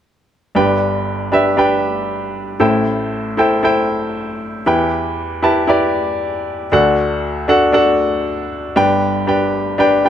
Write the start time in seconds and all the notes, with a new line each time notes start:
0.55 G1 G2 D4 G4 B4 G5
1.32 D4 G4 B4 E5
1.57 D4 G4 B4 G5
2.60 A1 A2 E4 A4 C5 G5
3.37 E4 A4 C5 G5
3.63 E4 A4 C5 G5
4.66 E2 E3 E4 G4 B4 G5
5.42 E4 G4 B4 A5
5.67 E4 G4 B4 D5
6.72 D2 D3 D4 F#4 A4 F#5
7.48 D4 F#4 A4 F#5
7.72 D4 F#4 A4 F#5
8.76 G1 G2 D4 G4 B4 G5
9.27 D4 G4 B4 G5
9.78 D4 G4 B4 G5
10.04 D4 G4 B4 G5